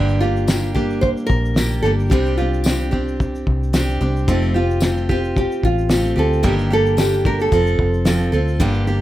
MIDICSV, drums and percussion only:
0, 0, Header, 1, 2, 480
1, 0, Start_track
1, 0, Tempo, 541516
1, 1871, Time_signature, 4, 2, 24, 8
1, 7989, End_track
2, 0, Start_track
2, 0, Title_t, "Drums"
2, 75, Note_on_c, 9, 82, 51
2, 164, Note_off_c, 9, 82, 0
2, 323, Note_on_c, 9, 82, 53
2, 412, Note_off_c, 9, 82, 0
2, 424, Note_on_c, 9, 54, 77
2, 429, Note_on_c, 9, 38, 103
2, 429, Note_on_c, 9, 82, 70
2, 512, Note_off_c, 9, 54, 0
2, 517, Note_off_c, 9, 38, 0
2, 517, Note_off_c, 9, 82, 0
2, 564, Note_on_c, 9, 82, 45
2, 653, Note_off_c, 9, 82, 0
2, 670, Note_on_c, 9, 36, 80
2, 675, Note_on_c, 9, 82, 49
2, 759, Note_off_c, 9, 36, 0
2, 764, Note_off_c, 9, 82, 0
2, 800, Note_on_c, 9, 82, 47
2, 889, Note_off_c, 9, 82, 0
2, 908, Note_on_c, 9, 82, 60
2, 911, Note_on_c, 9, 36, 93
2, 997, Note_off_c, 9, 82, 0
2, 1000, Note_off_c, 9, 36, 0
2, 1040, Note_on_c, 9, 82, 61
2, 1128, Note_off_c, 9, 82, 0
2, 1149, Note_on_c, 9, 36, 86
2, 1153, Note_on_c, 9, 82, 48
2, 1238, Note_off_c, 9, 36, 0
2, 1241, Note_off_c, 9, 82, 0
2, 1287, Note_on_c, 9, 82, 52
2, 1376, Note_off_c, 9, 82, 0
2, 1380, Note_on_c, 9, 82, 69
2, 1385, Note_on_c, 9, 38, 122
2, 1395, Note_on_c, 9, 54, 79
2, 1469, Note_off_c, 9, 82, 0
2, 1473, Note_off_c, 9, 38, 0
2, 1484, Note_off_c, 9, 54, 0
2, 1520, Note_on_c, 9, 82, 49
2, 1608, Note_off_c, 9, 82, 0
2, 1628, Note_on_c, 9, 38, 33
2, 1717, Note_off_c, 9, 38, 0
2, 1767, Note_on_c, 9, 82, 57
2, 1856, Note_off_c, 9, 82, 0
2, 1869, Note_on_c, 9, 82, 75
2, 1873, Note_on_c, 9, 36, 110
2, 1958, Note_off_c, 9, 82, 0
2, 1961, Note_off_c, 9, 36, 0
2, 2000, Note_on_c, 9, 82, 51
2, 2089, Note_off_c, 9, 82, 0
2, 2113, Note_on_c, 9, 82, 46
2, 2202, Note_off_c, 9, 82, 0
2, 2248, Note_on_c, 9, 82, 56
2, 2336, Note_off_c, 9, 82, 0
2, 2338, Note_on_c, 9, 54, 85
2, 2360, Note_on_c, 9, 38, 100
2, 2360, Note_on_c, 9, 82, 70
2, 2426, Note_off_c, 9, 54, 0
2, 2449, Note_off_c, 9, 38, 0
2, 2449, Note_off_c, 9, 82, 0
2, 2495, Note_on_c, 9, 82, 49
2, 2583, Note_off_c, 9, 82, 0
2, 2596, Note_on_c, 9, 36, 85
2, 2685, Note_off_c, 9, 36, 0
2, 2730, Note_on_c, 9, 82, 51
2, 2819, Note_off_c, 9, 82, 0
2, 2838, Note_on_c, 9, 36, 88
2, 2841, Note_on_c, 9, 82, 68
2, 2926, Note_off_c, 9, 36, 0
2, 2930, Note_off_c, 9, 82, 0
2, 2972, Note_on_c, 9, 82, 64
2, 3060, Note_off_c, 9, 82, 0
2, 3075, Note_on_c, 9, 36, 78
2, 3163, Note_off_c, 9, 36, 0
2, 3219, Note_on_c, 9, 82, 47
2, 3307, Note_off_c, 9, 82, 0
2, 3310, Note_on_c, 9, 82, 64
2, 3312, Note_on_c, 9, 54, 83
2, 3314, Note_on_c, 9, 38, 104
2, 3398, Note_off_c, 9, 82, 0
2, 3400, Note_off_c, 9, 54, 0
2, 3403, Note_off_c, 9, 38, 0
2, 3451, Note_on_c, 9, 82, 52
2, 3540, Note_off_c, 9, 82, 0
2, 3558, Note_on_c, 9, 82, 46
2, 3646, Note_off_c, 9, 82, 0
2, 3692, Note_on_c, 9, 82, 59
2, 3780, Note_off_c, 9, 82, 0
2, 3794, Note_on_c, 9, 36, 126
2, 3796, Note_on_c, 9, 82, 76
2, 3882, Note_off_c, 9, 36, 0
2, 3884, Note_off_c, 9, 82, 0
2, 3919, Note_on_c, 9, 82, 50
2, 4008, Note_off_c, 9, 82, 0
2, 4170, Note_on_c, 9, 82, 58
2, 4259, Note_off_c, 9, 82, 0
2, 4259, Note_on_c, 9, 54, 86
2, 4272, Note_on_c, 9, 38, 100
2, 4272, Note_on_c, 9, 82, 67
2, 4348, Note_off_c, 9, 54, 0
2, 4360, Note_off_c, 9, 82, 0
2, 4361, Note_off_c, 9, 38, 0
2, 4407, Note_on_c, 9, 82, 53
2, 4496, Note_off_c, 9, 82, 0
2, 4516, Note_on_c, 9, 36, 77
2, 4604, Note_off_c, 9, 36, 0
2, 4646, Note_on_c, 9, 82, 53
2, 4735, Note_off_c, 9, 82, 0
2, 4756, Note_on_c, 9, 36, 94
2, 4756, Note_on_c, 9, 82, 57
2, 4844, Note_off_c, 9, 36, 0
2, 4844, Note_off_c, 9, 82, 0
2, 4889, Note_on_c, 9, 82, 67
2, 4978, Note_off_c, 9, 82, 0
2, 4995, Note_on_c, 9, 36, 81
2, 5002, Note_on_c, 9, 82, 47
2, 5083, Note_off_c, 9, 36, 0
2, 5091, Note_off_c, 9, 82, 0
2, 5127, Note_on_c, 9, 82, 50
2, 5216, Note_off_c, 9, 82, 0
2, 5222, Note_on_c, 9, 82, 64
2, 5226, Note_on_c, 9, 38, 111
2, 5235, Note_on_c, 9, 54, 76
2, 5310, Note_off_c, 9, 82, 0
2, 5315, Note_off_c, 9, 38, 0
2, 5324, Note_off_c, 9, 54, 0
2, 5366, Note_on_c, 9, 82, 50
2, 5455, Note_off_c, 9, 82, 0
2, 5611, Note_on_c, 9, 82, 55
2, 5699, Note_off_c, 9, 82, 0
2, 5710, Note_on_c, 9, 82, 79
2, 5712, Note_on_c, 9, 36, 118
2, 5798, Note_off_c, 9, 82, 0
2, 5800, Note_off_c, 9, 36, 0
2, 5839, Note_on_c, 9, 82, 57
2, 5927, Note_off_c, 9, 82, 0
2, 6081, Note_on_c, 9, 82, 61
2, 6170, Note_off_c, 9, 82, 0
2, 6186, Note_on_c, 9, 54, 81
2, 6190, Note_on_c, 9, 38, 95
2, 6190, Note_on_c, 9, 82, 77
2, 6274, Note_off_c, 9, 54, 0
2, 6278, Note_off_c, 9, 38, 0
2, 6278, Note_off_c, 9, 82, 0
2, 6317, Note_on_c, 9, 82, 49
2, 6406, Note_off_c, 9, 82, 0
2, 6427, Note_on_c, 9, 36, 95
2, 6516, Note_off_c, 9, 36, 0
2, 6554, Note_on_c, 9, 82, 50
2, 6643, Note_off_c, 9, 82, 0
2, 6662, Note_on_c, 9, 82, 69
2, 6667, Note_on_c, 9, 36, 91
2, 6751, Note_off_c, 9, 82, 0
2, 6755, Note_off_c, 9, 36, 0
2, 6796, Note_on_c, 9, 82, 69
2, 6885, Note_off_c, 9, 82, 0
2, 6903, Note_on_c, 9, 36, 84
2, 6992, Note_off_c, 9, 36, 0
2, 7035, Note_on_c, 9, 82, 46
2, 7124, Note_off_c, 9, 82, 0
2, 7135, Note_on_c, 9, 82, 65
2, 7140, Note_on_c, 9, 38, 114
2, 7148, Note_on_c, 9, 54, 74
2, 7224, Note_off_c, 9, 82, 0
2, 7228, Note_off_c, 9, 38, 0
2, 7237, Note_off_c, 9, 54, 0
2, 7274, Note_on_c, 9, 82, 46
2, 7362, Note_off_c, 9, 82, 0
2, 7380, Note_on_c, 9, 82, 58
2, 7469, Note_off_c, 9, 82, 0
2, 7517, Note_on_c, 9, 82, 59
2, 7605, Note_off_c, 9, 82, 0
2, 7619, Note_on_c, 9, 82, 68
2, 7622, Note_on_c, 9, 36, 122
2, 7708, Note_off_c, 9, 82, 0
2, 7710, Note_off_c, 9, 36, 0
2, 7746, Note_on_c, 9, 82, 45
2, 7835, Note_off_c, 9, 82, 0
2, 7862, Note_on_c, 9, 82, 44
2, 7951, Note_off_c, 9, 82, 0
2, 7989, End_track
0, 0, End_of_file